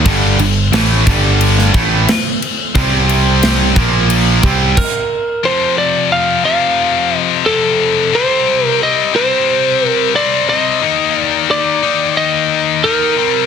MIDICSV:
0, 0, Header, 1, 5, 480
1, 0, Start_track
1, 0, Tempo, 672646
1, 40, Time_signature, 4, 2, 24, 8
1, 9606, End_track
2, 0, Start_track
2, 0, Title_t, "Lead electric guitar"
2, 0, Program_c, 0, 29
2, 3409, Note_on_c, 0, 70, 80
2, 3891, Note_on_c, 0, 72, 85
2, 3903, Note_off_c, 0, 70, 0
2, 4123, Note_off_c, 0, 72, 0
2, 4126, Note_on_c, 0, 74, 82
2, 4350, Note_off_c, 0, 74, 0
2, 4369, Note_on_c, 0, 77, 91
2, 4596, Note_off_c, 0, 77, 0
2, 4605, Note_on_c, 0, 77, 91
2, 5126, Note_off_c, 0, 77, 0
2, 5126, Note_on_c, 0, 75, 91
2, 5323, Note_on_c, 0, 69, 86
2, 5348, Note_off_c, 0, 75, 0
2, 5815, Note_on_c, 0, 72, 93
2, 5820, Note_off_c, 0, 69, 0
2, 6186, Note_off_c, 0, 72, 0
2, 6186, Note_on_c, 0, 70, 93
2, 6299, Note_off_c, 0, 70, 0
2, 6302, Note_on_c, 0, 75, 94
2, 6518, Note_off_c, 0, 75, 0
2, 6534, Note_on_c, 0, 72, 103
2, 7048, Note_off_c, 0, 72, 0
2, 7048, Note_on_c, 0, 70, 103
2, 7245, Note_off_c, 0, 70, 0
2, 7248, Note_on_c, 0, 74, 102
2, 7485, Note_off_c, 0, 74, 0
2, 7488, Note_on_c, 0, 75, 97
2, 7981, Note_off_c, 0, 75, 0
2, 7981, Note_on_c, 0, 74, 97
2, 8209, Note_off_c, 0, 74, 0
2, 8212, Note_on_c, 0, 74, 98
2, 8683, Note_off_c, 0, 74, 0
2, 8685, Note_on_c, 0, 75, 91
2, 9162, Note_on_c, 0, 70, 102
2, 9178, Note_off_c, 0, 75, 0
2, 9606, Note_off_c, 0, 70, 0
2, 9606, End_track
3, 0, Start_track
3, 0, Title_t, "Distorted electric guitar"
3, 0, Program_c, 1, 30
3, 39, Note_on_c, 1, 43, 94
3, 44, Note_on_c, 1, 50, 111
3, 45, Note_on_c, 1, 55, 108
3, 273, Note_off_c, 1, 43, 0
3, 275, Note_off_c, 1, 50, 0
3, 276, Note_off_c, 1, 55, 0
3, 283, Note_on_c, 1, 43, 81
3, 283, Note_on_c, 1, 50, 85
3, 474, Note_off_c, 1, 43, 0
3, 474, Note_off_c, 1, 50, 0
3, 520, Note_on_c, 1, 45, 111
3, 525, Note_on_c, 1, 52, 99
3, 528, Note_on_c, 1, 57, 97
3, 754, Note_off_c, 1, 45, 0
3, 756, Note_off_c, 1, 52, 0
3, 758, Note_off_c, 1, 57, 0
3, 761, Note_on_c, 1, 43, 91
3, 766, Note_on_c, 1, 50, 89
3, 768, Note_on_c, 1, 55, 102
3, 1235, Note_off_c, 1, 43, 0
3, 1238, Note_off_c, 1, 50, 0
3, 1239, Note_off_c, 1, 55, 0
3, 1242, Note_on_c, 1, 45, 89
3, 1246, Note_on_c, 1, 52, 97
3, 1247, Note_on_c, 1, 57, 95
3, 1476, Note_off_c, 1, 45, 0
3, 1478, Note_off_c, 1, 52, 0
3, 1478, Note_off_c, 1, 57, 0
3, 1962, Note_on_c, 1, 48, 90
3, 1967, Note_on_c, 1, 55, 103
3, 1968, Note_on_c, 1, 60, 117
3, 2678, Note_off_c, 1, 48, 0
3, 2680, Note_off_c, 1, 55, 0
3, 2681, Note_off_c, 1, 60, 0
3, 2681, Note_on_c, 1, 46, 86
3, 2685, Note_on_c, 1, 58, 91
3, 2686, Note_on_c, 1, 53, 98
3, 3156, Note_off_c, 1, 46, 0
3, 3159, Note_off_c, 1, 53, 0
3, 3159, Note_off_c, 1, 58, 0
3, 3159, Note_on_c, 1, 48, 78
3, 3163, Note_on_c, 1, 55, 89
3, 3166, Note_on_c, 1, 60, 98
3, 3396, Note_off_c, 1, 48, 0
3, 3398, Note_off_c, 1, 55, 0
3, 3399, Note_off_c, 1, 60, 0
3, 3878, Note_on_c, 1, 41, 96
3, 3889, Note_on_c, 1, 48, 97
3, 3895, Note_on_c, 1, 53, 106
3, 4589, Note_off_c, 1, 41, 0
3, 4590, Note_off_c, 1, 53, 0
3, 4594, Note_off_c, 1, 48, 0
3, 4598, Note_on_c, 1, 53, 90
3, 4607, Note_on_c, 1, 48, 86
3, 4612, Note_on_c, 1, 41, 73
3, 5309, Note_off_c, 1, 53, 0
3, 5311, Note_off_c, 1, 41, 0
3, 5313, Note_off_c, 1, 48, 0
3, 5319, Note_on_c, 1, 41, 87
3, 5329, Note_on_c, 1, 48, 81
3, 5335, Note_on_c, 1, 53, 79
3, 5787, Note_off_c, 1, 48, 0
3, 5789, Note_off_c, 1, 41, 0
3, 5796, Note_on_c, 1, 48, 91
3, 5797, Note_off_c, 1, 53, 0
3, 5804, Note_on_c, 1, 55, 96
3, 5808, Note_on_c, 1, 60, 103
3, 6507, Note_off_c, 1, 48, 0
3, 6510, Note_off_c, 1, 60, 0
3, 6519, Note_on_c, 1, 60, 92
3, 6526, Note_off_c, 1, 55, 0
3, 6529, Note_on_c, 1, 55, 81
3, 6533, Note_on_c, 1, 48, 75
3, 7228, Note_off_c, 1, 60, 0
3, 7232, Note_off_c, 1, 48, 0
3, 7241, Note_on_c, 1, 48, 81
3, 7247, Note_off_c, 1, 55, 0
3, 7250, Note_on_c, 1, 55, 83
3, 7256, Note_on_c, 1, 60, 99
3, 7709, Note_off_c, 1, 48, 0
3, 7716, Note_off_c, 1, 60, 0
3, 7722, Note_on_c, 1, 51, 95
3, 7727, Note_off_c, 1, 55, 0
3, 7730, Note_on_c, 1, 58, 113
3, 7736, Note_on_c, 1, 63, 116
3, 8428, Note_off_c, 1, 51, 0
3, 8432, Note_off_c, 1, 58, 0
3, 8435, Note_off_c, 1, 63, 0
3, 8443, Note_on_c, 1, 63, 89
3, 8452, Note_on_c, 1, 58, 79
3, 8458, Note_on_c, 1, 51, 86
3, 9148, Note_off_c, 1, 63, 0
3, 9152, Note_off_c, 1, 58, 0
3, 9156, Note_off_c, 1, 51, 0
3, 9163, Note_on_c, 1, 51, 81
3, 9171, Note_on_c, 1, 58, 85
3, 9177, Note_on_c, 1, 63, 90
3, 9388, Note_off_c, 1, 51, 0
3, 9392, Note_off_c, 1, 58, 0
3, 9395, Note_off_c, 1, 63, 0
3, 9397, Note_on_c, 1, 48, 88
3, 9407, Note_on_c, 1, 55, 105
3, 9414, Note_on_c, 1, 60, 112
3, 9606, Note_off_c, 1, 48, 0
3, 9606, Note_off_c, 1, 55, 0
3, 9606, Note_off_c, 1, 60, 0
3, 9606, End_track
4, 0, Start_track
4, 0, Title_t, "Picked electric bass"
4, 0, Program_c, 2, 34
4, 40, Note_on_c, 2, 31, 99
4, 264, Note_off_c, 2, 31, 0
4, 272, Note_on_c, 2, 31, 92
4, 500, Note_off_c, 2, 31, 0
4, 515, Note_on_c, 2, 33, 100
4, 742, Note_off_c, 2, 33, 0
4, 761, Note_on_c, 2, 31, 96
4, 1214, Note_off_c, 2, 31, 0
4, 1243, Note_on_c, 2, 33, 89
4, 1467, Note_off_c, 2, 33, 0
4, 1964, Note_on_c, 2, 36, 86
4, 2657, Note_off_c, 2, 36, 0
4, 2684, Note_on_c, 2, 34, 94
4, 3137, Note_off_c, 2, 34, 0
4, 3163, Note_on_c, 2, 36, 86
4, 3388, Note_off_c, 2, 36, 0
4, 9606, End_track
5, 0, Start_track
5, 0, Title_t, "Drums"
5, 39, Note_on_c, 9, 49, 79
5, 41, Note_on_c, 9, 36, 103
5, 111, Note_off_c, 9, 49, 0
5, 112, Note_off_c, 9, 36, 0
5, 281, Note_on_c, 9, 49, 69
5, 352, Note_off_c, 9, 49, 0
5, 522, Note_on_c, 9, 49, 83
5, 527, Note_on_c, 9, 38, 117
5, 593, Note_off_c, 9, 49, 0
5, 599, Note_off_c, 9, 38, 0
5, 763, Note_on_c, 9, 36, 102
5, 763, Note_on_c, 9, 49, 63
5, 834, Note_off_c, 9, 36, 0
5, 835, Note_off_c, 9, 49, 0
5, 1004, Note_on_c, 9, 49, 83
5, 1075, Note_off_c, 9, 49, 0
5, 1132, Note_on_c, 9, 38, 36
5, 1204, Note_off_c, 9, 38, 0
5, 1244, Note_on_c, 9, 36, 109
5, 1246, Note_on_c, 9, 49, 58
5, 1316, Note_off_c, 9, 36, 0
5, 1317, Note_off_c, 9, 49, 0
5, 1487, Note_on_c, 9, 49, 80
5, 1492, Note_on_c, 9, 38, 101
5, 1558, Note_off_c, 9, 49, 0
5, 1564, Note_off_c, 9, 38, 0
5, 1729, Note_on_c, 9, 49, 59
5, 1800, Note_off_c, 9, 49, 0
5, 1965, Note_on_c, 9, 36, 102
5, 1965, Note_on_c, 9, 49, 73
5, 2036, Note_off_c, 9, 49, 0
5, 2037, Note_off_c, 9, 36, 0
5, 2207, Note_on_c, 9, 49, 60
5, 2279, Note_off_c, 9, 49, 0
5, 2445, Note_on_c, 9, 49, 78
5, 2451, Note_on_c, 9, 38, 117
5, 2517, Note_off_c, 9, 49, 0
5, 2522, Note_off_c, 9, 38, 0
5, 2685, Note_on_c, 9, 36, 106
5, 2688, Note_on_c, 9, 49, 55
5, 2756, Note_off_c, 9, 36, 0
5, 2759, Note_off_c, 9, 49, 0
5, 2925, Note_on_c, 9, 49, 81
5, 2996, Note_off_c, 9, 49, 0
5, 3161, Note_on_c, 9, 49, 61
5, 3165, Note_on_c, 9, 36, 97
5, 3233, Note_off_c, 9, 49, 0
5, 3236, Note_off_c, 9, 36, 0
5, 3406, Note_on_c, 9, 36, 100
5, 3407, Note_on_c, 9, 57, 98
5, 3478, Note_off_c, 9, 36, 0
5, 3478, Note_off_c, 9, 57, 0
5, 9606, End_track
0, 0, End_of_file